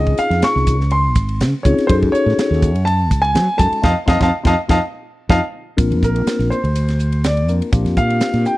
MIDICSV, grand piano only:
0, 0, Header, 1, 2, 480
1, 0, Start_track
1, 0, Tempo, 487013
1, 1865, Time_signature, 4, 2, 24, 8
1, 8453, End_track
2, 0, Start_track
2, 0, Title_t, "Grand piano"
2, 0, Program_c, 0, 0
2, 0, Note_on_c, 0, 75, 71
2, 170, Note_off_c, 0, 75, 0
2, 184, Note_on_c, 0, 77, 86
2, 431, Note_off_c, 0, 77, 0
2, 432, Note_on_c, 0, 85, 95
2, 904, Note_on_c, 0, 84, 89
2, 923, Note_off_c, 0, 85, 0
2, 1351, Note_off_c, 0, 84, 0
2, 1608, Note_on_c, 0, 73, 73
2, 1844, Note_on_c, 0, 72, 83
2, 1864, Note_off_c, 0, 73, 0
2, 1901, Note_off_c, 0, 72, 0
2, 2091, Note_on_c, 0, 73, 96
2, 2779, Note_off_c, 0, 73, 0
2, 2809, Note_on_c, 0, 81, 93
2, 3170, Note_on_c, 0, 80, 112
2, 3196, Note_off_c, 0, 81, 0
2, 3529, Note_on_c, 0, 81, 104
2, 3545, Note_off_c, 0, 80, 0
2, 3760, Note_off_c, 0, 81, 0
2, 3783, Note_on_c, 0, 75, 87
2, 3784, Note_on_c, 0, 77, 88
2, 3784, Note_on_c, 0, 81, 95
2, 3866, Note_off_c, 0, 75, 0
2, 3866, Note_off_c, 0, 77, 0
2, 3866, Note_off_c, 0, 81, 0
2, 4021, Note_on_c, 0, 77, 95
2, 4028, Note_on_c, 0, 75, 104
2, 4030, Note_on_c, 0, 81, 98
2, 4105, Note_off_c, 0, 77, 0
2, 4109, Note_off_c, 0, 75, 0
2, 4110, Note_off_c, 0, 81, 0
2, 4159, Note_on_c, 0, 75, 86
2, 4164, Note_on_c, 0, 77, 90
2, 4165, Note_on_c, 0, 81, 89
2, 4228, Note_off_c, 0, 75, 0
2, 4232, Note_off_c, 0, 77, 0
2, 4232, Note_off_c, 0, 81, 0
2, 4401, Note_on_c, 0, 81, 95
2, 4403, Note_on_c, 0, 77, 96
2, 4407, Note_on_c, 0, 75, 92
2, 4470, Note_off_c, 0, 81, 0
2, 4471, Note_off_c, 0, 77, 0
2, 4473, Note_off_c, 0, 75, 0
2, 4635, Note_on_c, 0, 77, 90
2, 4636, Note_on_c, 0, 75, 93
2, 4636, Note_on_c, 0, 81, 94
2, 4706, Note_off_c, 0, 77, 0
2, 4707, Note_off_c, 0, 75, 0
2, 4707, Note_off_c, 0, 81, 0
2, 5224, Note_on_c, 0, 81, 89
2, 5226, Note_on_c, 0, 77, 101
2, 5228, Note_on_c, 0, 75, 87
2, 5306, Note_off_c, 0, 81, 0
2, 5307, Note_off_c, 0, 77, 0
2, 5308, Note_off_c, 0, 75, 0
2, 5956, Note_on_c, 0, 70, 70
2, 6396, Note_off_c, 0, 70, 0
2, 6410, Note_on_c, 0, 72, 69
2, 7097, Note_off_c, 0, 72, 0
2, 7160, Note_on_c, 0, 74, 73
2, 7384, Note_off_c, 0, 74, 0
2, 7859, Note_on_c, 0, 77, 86
2, 8306, Note_off_c, 0, 77, 0
2, 8339, Note_on_c, 0, 79, 74
2, 8453, Note_off_c, 0, 79, 0
2, 8453, End_track
0, 0, End_of_file